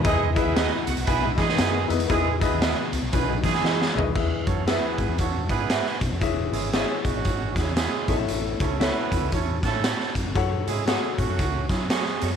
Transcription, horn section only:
X:1
M:4/4
L:1/16
Q:"Swing" 1/4=116
K:E
V:1 name="Horn section"
[G,EG]2 [B,EGB]4 z2 [B,EGB]2 [G,DG]4 z2 | [G,EG]2 [B,EGB]4 z2 [B,EGB]2 [G,EG]4 z2 | z2 [CFAc]2 [B,EGB]4 [CFAc]2 [B,EGB]4 z2 | z2 [G,CEG]2 [G,CEG]2 [F,G,CF]4 [G,CEG]2 [G,CEG]3 z |
z2 [CEAc]2 [B,CEB]4 [CEAc]2 [A,CEA]4 z2 | z2 [G,CEG]2 [G,CEG]2 [F,A,CF]4 [G,CEG]2 [G,A,CG]3 z |]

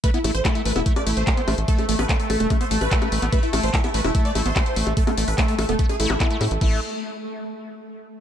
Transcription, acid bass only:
X:1
M:4/4
L:1/16
Q:1/4=146
K:Am
V:1 name="Acid bass"
A, B, A, z A, A, A, B, A, z A, A, A, B, A, z | A, A, A, B, A, z A, A, A, B, A, z A, A, A, B, | A, z A, A, A, B, A, z A, A, A, B, A, z A, A, | A, B, A, z A, A, A, B, A, z E A, B, A, A, z |
A,2 z12 z2 |]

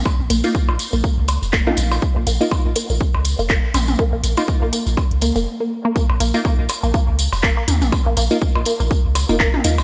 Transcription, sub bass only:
X:1
M:4/4
L:1/16
Q:"Swing 16ths" 1/4=122
K:Bbm
V:1 name="Sub bass" clef=bass
z B,,, B,,, z2 B,,, z B,,, z D,,2 F,,,2 z B,,,2 | z B,,, B,,, z2 B,,, z B,,, z D,,2 F,,,2 z B,,,2 | z B,,, B,,, z2 B,,, z B,,, z D,,2 F,,, z4 | z B,,, B,,, z2 B,,, z B,,, z D,,2 F,,,2 z E,, B,,, |
z B,,, B,,, z2 B,,, z B,,, z D,,2 F,,,2 z E,, B,,, |]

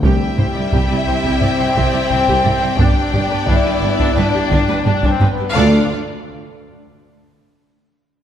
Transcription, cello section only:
X:1
M:4/4
L:1/16
Q:1/4=87
K:C
V:1 name="Cello section" clef=bass
C,, z C,, C,, C,, C,, C,, C,, C,, C,, C,, C,, C,, C,, C,, C,, | G,, z G,, G,, G,, G,, G,, G,, G,, G,, G,, G,, G,, G,, G,, G,, | D,,2 z12 z2 |]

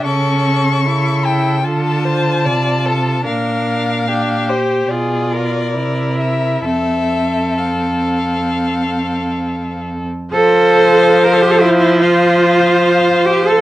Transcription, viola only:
X:1
M:4/4
L:1/16
Q:1/4=72
K:F
V:1 name="Viola"
^C4 E2 E2 F8 | D4 D2 G2 F4 E4 | C12- C3 z | F,16 |]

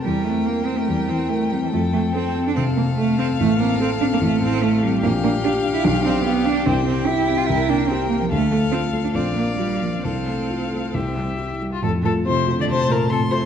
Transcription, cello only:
X:1
M:4/4
L:1/16
Q:1/4=144
K:F
V:1 name="Cello"
G,2 A,2 B,2 C A, G,2 C2 A,2 G, E, | A,2 A,2 C3 D C2 B,2 A,2 C2 | A,2 B,2 C2 D B, A,2 C2 A,2 G, z | B,2 B,2 D3 E D2 C2 =B,2 D2 |
C2 C2 E3 F E2 D2 C2 B, F, | A,2 A,2 C3 D C2 B,2 G,2 F,2 | C12 z4 | A,,2 A,,2 C,3 D, C,2 B,,2 A,,2 C,2 |]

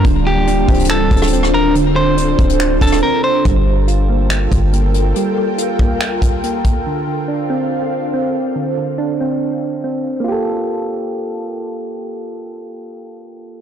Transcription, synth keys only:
X:1
M:4/4
L:1/8
Q:1/4=141
K:Gm
V:1 name="Synth keys"
D, D, D C3 C2 | D, D, D C3 C2 | G, G, F B,3 B,2 | G, G, F B,3 B,2 |
D, D, D C3 C2 | D, D, D C3 C2 | [B,FGA]8- | [B,FGA]8 |]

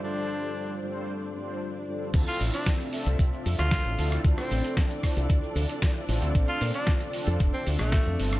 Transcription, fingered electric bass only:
X:1
M:4/4
L:1/16
Q:1/4=114
K:Dm
V:1 name="Fingered electric bass" clef=bass
z16 | D,, z A,,, z4 C,, C,, z F,, D,, z A,,, D,, z | D,, z A,,, z4 C,, D,, z D,, z3 A,,, D,, | B,,, z B,, z4 F,, F,,, z D,, B,,, z F,, G,,, z |]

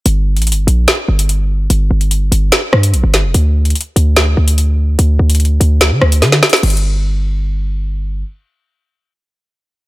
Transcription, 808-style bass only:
X:1
M:4/4
L:1/16
Q:1/4=146
K:Gm
V:1 name="808-style bass" clef=bass
G,,,3 A,,,3/2 G,,,3/2 B,,,2 z2 G,,,6 | G,,,2 G,,,4 G,,,2 z2 G,,2 B,,, G,,,2 F,,, | D,,4 z2 D,,4 D,,6 | D,,2 D,,4 D,,3 D, D,,2 D,2 z2 |
G,,,16 | z16 |]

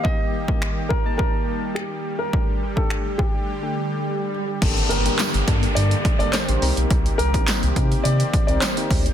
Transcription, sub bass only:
X:1
M:4/4
L:1/16
Q:1/4=105
K:Gm
V:1 name="Sub bass" clef=bass
z16 | z16 | G,,,2 G,,,2 z G,,, G,,2 G,,2 z G,,, z A,,, C,, =B,,, | C,,2 C,,2 z C,, C,2 C,2 z C,, z2 D,,2 |]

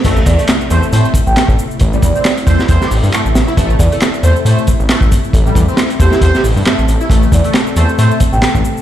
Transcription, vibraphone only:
X:1
M:4/4
L:1/16
Q:"Swing 16ths" 1/4=136
K:Am
V:1 name="Vibraphone"
z2 d z8 g z4 | z2 d d z12 | z2 d z3 c z8 z | A A z4 G G z8 |
z2 d z8 g z4 |]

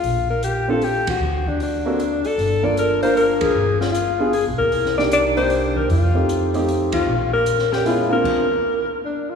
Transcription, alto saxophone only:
X:1
M:3/4
L:1/8
Q:"Swing" 1/4=154
K:Bb
V:1 name="Alto saxophone"
F B G A G _G- | _G D D3 A- | A d B c B _A- | _A F F2 A B- |
B d d c2 B | F4 z F- | F B2 G F B- | B4 D F |]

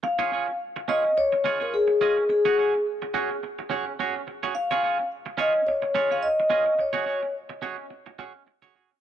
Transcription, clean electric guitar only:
X:1
M:4/4
L:1/16
Q:"Swing 16ths" 1/4=106
K:Db
V:1 name="Clean electric guitar"
z [DFAd] [DFAd] z3 [DFAd]2 z2 [DFAd] [DFAd] z2 [DFAe]2 | z [DGAd] [DGAd] z3 [DGAd]2 z2 [DGAd]2 [DGAd]2 z [DGAd] | z [DFAd] [DFAd] z3 [DFAd]2 z2 [DFAd] [DFAd] z2 [DFAe]2 | z [DGAd] [DGAd] z3 [DGAd]2 z2 [DGAd]2 z [DGAd] [DGAd] z |]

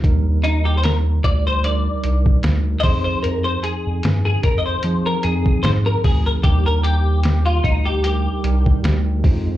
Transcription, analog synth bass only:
X:1
M:4/4
L:1/16
Q:"Swing 16ths" 1/4=75
K:Eb
V:1 name="Analog synth bass" clef=bass
E,,6 D,,4 C,,2 D,,2 F,,2 | F,,2 z F,, G,,2 F,,2 F,2 F,,2 A,,2 D,,2 | E,,6 D,,4 C,,2 D,,2 F,,2 |]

